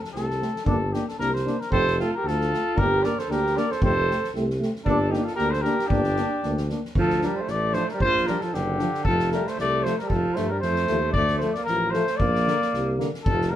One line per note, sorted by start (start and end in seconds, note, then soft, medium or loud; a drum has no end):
0.01 0.12 A4 medium
0.01 snare soft
0.13 0.43 C2 medium
0.13 0.26 A3 medium
0.13 0.24 C4 medium
0.13 0.62 A4 medium
0.13 snare soft
0.30 snare soft
0.41 0.51 A3 medium
0.41 0.51 C4 medium
0.41 snare soft
0.56 snare soft
0.65 0.95 G1 medium
0.65 0.77 A#3 medium
0.65 0.76 D4 medium
0.65 0.94 A4 medium
0.65 kick medium
0.93 1.04 A#3 medium
0.93 1.04 D4 medium
0.93 1.07 G4 medium
0.93 snare soft
1.08 1.18 A4 medium
1.08 snare soft
1.19 1.48 C2 medium
1.19 1.30 A#3 medium
1.19 1.30 D4 soft
1.19 1.32 A#4 loud
1.19 snare soft
1.33 1.62 C5 medium
1.33 snare soft
1.45 1.56 A#3 medium
1.45 1.56 D4 medium
1.45 snare soft
1.60 1.71 A#4 medium
1.60 snare soft
1.71 2.01 F1 medium
1.71 1.83 A3 medium
1.71 1.82 C4 medium
1.71 1.96 A4 loud
1.71 1.96 C5 loud
1.71 kick medium
1.87 snare soft
1.98 2.09 A3 medium
1.98 2.09 C4 medium
1.98 2.12 F4 medium
1.98 2.13 A4 medium
1.98 snare soft
2.14 2.30 G4 medium
2.14 2.28 A#4 medium
2.22 2.53 D2 medium
2.22 2.36 A3 soft
2.22 2.33 C4 soft
2.26 2.81 F4 medium
2.26 2.79 A4 loud
2.26 snare soft
2.41 snare soft
2.50 2.61 A3 soft
2.50 2.61 C4 medium
2.50 snare soft
2.75 3.06 G1 medium
2.75 2.87 A#3 medium
2.75 2.86 D4 medium
2.75 3.05 A#4 loud
2.75 kick medium
2.80 3.07 G4 medium
3.03 3.14 A#3 medium
3.03 3.13 D4 medium
3.03 3.21 A#4 medium
3.03 3.20 D5 medium
3.03 snare soft
3.18 3.33 A4 medium
3.18 3.31 C5 medium
3.18 snare soft
3.28 3.57 D2 medium
3.28 3.39 A#3 medium
3.28 3.40 D4 medium
3.28 3.60 G4 medium
3.28 3.58 A#4 medium
3.28 snare soft
3.46 snare soft
3.55 3.66 A#3 medium
3.55 3.66 D4 medium
3.55 3.73 A#4 medium
3.55 3.73 D5 medium
3.55 snare soft
3.71 3.82 A4 medium
3.71 3.82 C5 medium
3.71 snare soft
3.81 4.10 F1 medium
3.81 3.92 A3 medium
3.81 3.93 C4 medium
3.81 4.32 A4 loud
3.81 4.31 C5 loud
3.81 kick loud
4.07 4.17 A3 medium
4.07 4.19 C4 medium
4.07 snare soft
4.24 snare soft
4.34 4.63 C2 medium
4.34 4.46 A3 medium
4.34 4.45 C4 medium
4.34 snare soft
4.50 snare soft
4.59 4.70 A3 medium
4.59 4.72 C4 medium
4.59 snare soft
4.75 snare soft
4.85 5.15 G1 medium
4.85 4.96 A#3 medium
4.85 5.10 D4 medium
4.85 4.98 D4 medium
4.85 5.13 A4 medium
4.85 kick medium
5.08 5.25 D#4 medium
5.08 5.26 G4 medium
5.13 5.23 A#3 medium
5.13 5.24 D4 medium
5.13 snare soft
5.23 5.35 F4 medium
5.23 5.35 A4 medium
5.23 snare soft
5.35 5.49 A#3 medium
5.35 5.51 G4 medium
5.35 5.52 A#4 loud
5.35 snare soft
5.40 5.68 D2 medium
5.40 5.50 D4 medium
5.49 5.63 A4 medium
5.49 5.63 C5 medium
5.49 snare soft
5.62 5.75 D4 medium
5.62 5.89 G4 medium
5.62 5.89 A#4 medium
5.62 snare soft
5.66 5.76 A#3 medium
5.79 snare soft
5.87 6.68 D4 medium
5.87 6.01 D4 medium
5.87 6.68 G4 medium
5.87 kick medium
5.91 6.21 G1 medium
5.91 6.02 A#3 medium
6.04 snare soft
6.16 6.28 A#3 medium
6.16 6.27 D4 medium
6.16 snare soft
6.42 6.73 D2 medium
6.42 6.55 A#3 medium
6.42 6.53 D4 soft
6.42 snare soft
6.57 snare soft
6.69 6.81 A#3 medium
6.69 6.80 D4 soft
6.69 snare soft
6.85 snare soft
6.95 7.24 D2 medium
6.95 7.27 F3 loud
6.95 kick medium
7.00 7.27 A4 loud
7.10 snare soft
7.21 7.33 F3 soft
7.21 7.32 D4 medium
7.21 snare soft
7.25 7.43 G3 medium
7.25 7.38 A#4 medium
7.37 7.51 C5 medium
7.41 7.53 A3 medium
7.47 7.77 A1 medium
7.47 7.75 D5 loud
7.47 snare soft
7.53 7.78 A3 loud
7.73 7.85 F3 medium
7.73 7.84 D4 medium
7.73 7.88 C5 loud
7.73 snare soft
7.78 7.91 A3 medium
7.88 8.00 A#4 medium
7.88 snare soft
7.94 8.02 G3 medium
8.00 8.29 A#1 medium
8.00 8.31 F3 loud
8.00 8.28 C5 loud
8.00 kick medium
8.17 snare soft
8.26 8.37 F3 medium
8.26 8.44 G3 medium
8.26 8.37 D4 medium
8.26 8.42 A#4 medium
8.26 snare soft
8.40 8.55 F3 medium
8.40 8.56 A4 medium
8.40 snare soft
8.53 8.82 F#1 medium
8.53 9.06 D3 medium
8.53 9.04 G4 medium
8.53 snare soft
8.78 8.90 F3 medium
8.78 8.89 D4 medium
8.78 snare soft
8.94 snare soft
9.04 9.35 F1 medium
9.04 9.31 F3 medium
9.04 9.29 A4 loud
9.04 kick medium
9.19 snare soft
9.31 9.42 F3 medium
9.31 9.49 G3 medium
9.31 9.42 A3 medium
9.31 9.50 A#4 medium
9.31 snare soft
9.47 9.59 A3 medium
9.47 9.59 C5 medium
9.47 snare soft
9.58 9.87 C2 medium
9.58 9.86 A3 medium
9.58 9.85 D5 loud
9.58 snare soft
9.84 9.95 F3 medium
9.84 9.96 A3 medium
9.84 10.00 A3 medium
9.84 9.98 C5 medium
9.84 snare soft
9.98 10.15 G3 medium
9.98 10.08 A#4 medium
9.98 snare soft
10.07 10.25 F1 medium
10.07 10.36 A4 loud
10.07 kick medium
10.14 10.38 F3 medium
10.34 10.60 G2 medium
10.34 10.48 F3 medium
10.34 10.47 A3 medium
10.34 10.53 A3 medium
10.34 10.50 C5 medium
10.34 snare soft
10.48 10.62 G3 medium
10.48 10.60 A#4 medium
10.60 10.87 F2 medium
10.60 11.12 A3 medium
10.60 11.10 C5 loud
10.60 snare soft
10.75 snare soft
10.87 11.13 D#2 medium
10.87 10.99 F3 medium
10.87 10.99 A3 medium
10.87 snare soft
11.12 11.44 D2 medium
11.12 11.40 A3 medium
11.12 11.37 D5 loud
11.12 kick medium
11.27 snare soft
11.38 11.52 F3 soft
11.38 11.51 A3 medium
11.38 11.52 C5 medium
11.38 snare soft
11.43 11.56 A3 medium
11.53 11.67 A#3 medium
11.53 11.64 D5 medium
11.53 snare soft
11.65 11.97 A1 medium
11.65 11.92 A#4 loud
11.65 snare soft
11.69 11.96 F3 medium
11.91 12.04 F3 medium
11.91 12.04 A3 medium
11.91 12.21 A3 medium
11.91 12.18 C5 medium
11.91 snare soft
12.07 snare soft
12.17 12.99 A#3 medium
12.17 12.98 D5 loud
12.17 kick medium
12.21 12.50 A#1 medium
12.35 snare soft
12.46 12.56 D3 medium
12.46 12.58 A#3 medium
12.46 snare soft
12.62 snare soft
12.73 13.02 C2 medium
12.73 snare soft
12.98 13.09 D3 medium
12.98 13.08 A#3 medium
12.98 snare soft
13.14 snare soft
13.22 13.55 F1 medium
13.22 13.54 F3 medium
13.22 13.51 A4 loud
13.22 kick medium
13.41 snare soft
13.50 13.56 F3 medium
13.50 13.56 G3 medium
13.50 13.56 A3 medium
13.50 13.56 A#4 medium